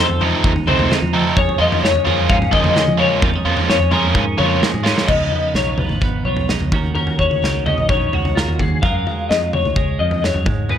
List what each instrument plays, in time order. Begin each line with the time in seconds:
Already playing: clean electric guitar F2 F3 D#4 A4
0.00 fingered electric bass F2, clean electric guitar C5
0.10 floor tom
0.21 overdriven electric guitar F3 A3 C4 D#4, clean electric guitar D#4, floor tom
0.44 fingered electric bass D#2, kick, floor tom
0.56 floor tom
0.67 fingered electric bass C2, overdriven electric guitar F3 A3 C4 D#4, clean electric guitar C4 C5, mid tom
0.79 floor tom, mid tom
0.91 clean electric guitar D#4, snare, mid tom
1.02 fingered electric bass F3, floor tom, mid tom
1.14 clean electric guitar F2 A4, overdriven electric guitar F3 A3 C4 D#4
1.37 fingered electric bass F2, clean electric guitar F2 G#4 C#5, kick, floor tom
1.49 floor tom
1.59 fingered electric bass F2, overdriven electric guitar F3 A#3 C#4 F4, clean electric guitar F3 D#5
1.72 floor tom
1.83 fingered electric bass F2, clean electric guitar C#4 C#5, snare
1.95 floor tom
2.05 overdriven electric guitar F3 A#3 C#4 F4, clean electric guitar G#4, floor tom
2.29 fingered electric bass G#2, clean electric guitar C#4 F5, kick, floor tom
2.42 floor tom
2.52 fingered electric bass F2, overdriven electric guitar F3 A#3 C#4 F4, clean electric guitar D#5, kick, mid tom
2.64 floor tom, mid tom
2.76 clean electric guitar G#3, snare, mid tom
2.88 fingered electric bass F3, floor tom, mid tom
2.98 overdriven electric guitar F3 A#3 C#4 F4, clean electric guitar C#4 C#5
3.22 fingered electric bass F2, clean electric guitar F2 F4 A#4, kick, floor tom
3.34 clean electric guitar G#4, floor tom
3.45 fingered electric bass F2, overdriven electric guitar F3 A#3 C#4 F4, clean electric guitar F3
3.57 floor tom
3.69 fingered electric bass F2, clean electric guitar C#4 C#5, snare
3.80 floor tom
3.91 overdriven electric guitar F3 A#3 C#4 F4, clean electric guitar G#4 A#4, floor tom
4.15 fingered electric bass G#2, clean electric guitar C#4, kick
4.38 fingered electric bass F2, overdriven electric guitar F3 A#3 C#4 F4, clean electric guitar C#5, mid tom
4.63 clean electric guitar G#3, snare
4.74 fingered electric bass G#2, mid tom
4.83 overdriven electric guitar F3 A#3 C#4 F4, clean electric guitar C#4, snare
4.98 snare
5.08 fingered electric bass C#2, clean electric guitar C#3 F3 B3 D#4 D#5, kick, floor tom, crash
5.12 clean electric guitar F4
5.32 clean electric guitar B3, floor tom
5.54 fingered electric bass B1, clean electric guitar D#4 C#5, snare
5.78 clean electric guitar F3 B4, floor tom, mid tom
5.89 fingered electric bass G#1, mid tom
6.01 clean electric guitar B3, kick, floor tom
6.25 fingered electric bass B1, clean electric guitar F3 C#5
6.37 floor tom
6.49 clean electric guitar D#4, snare
6.60 fingered electric bass C#2, floor tom
6.72 fingered electric bass D#2, clean electric guitar D#2 D#3 C#4 F#4 A#4, kick, floor tom, mid tom
6.95 clean electric guitar C#4 A#4, floor tom
7.07 floor tom
7.19 clean electric guitar F#4 C#5, kick, floor tom
7.31 mid tom
7.43 fingered electric bass C#2, clean electric guitar D#3, snare
7.66 clean electric guitar C#4 D#5, floor tom, mid tom
7.78 fingered electric bass A#1, mid tom
7.89 clean electric guitar D#3 C#5, kick, floor tom
8.13 fingered electric bass C#2, clean electric guitar F#4, floor tom
8.25 floor tom
8.35 clean electric guitar F4 A#4, snare
8.47 fingered electric bass D#2, floor tom
8.59 clean electric guitar D#2 G#4, kick, floor tom, mid tom
8.82 fingered electric bass F#2, clean electric guitar F#3 G#3 F4 A#4 F5, kick, floor tom
9.07 clean electric guitar G#3, floor tom
9.29 fingered electric bass F2, clean electric guitar F4 D#5, snare
9.53 clean electric guitar C#5, floor tom, mid tom
9.65 fingered electric bass C#2, mid tom
9.76 clean electric guitar G#3, kick, floor tom
9.99 clean electric guitar F2 D#5, fingered electric bass F2
10.11 floor tom
10.22 clean electric guitar F#2 C#5, snare
10.34 fingered electric bass F#2, floor tom
10.46 clean electric guitar G#2, fingered electric bass G#2, kick, floor tom, mid tom
10.69 clean electric guitar G#3 B4, floor tom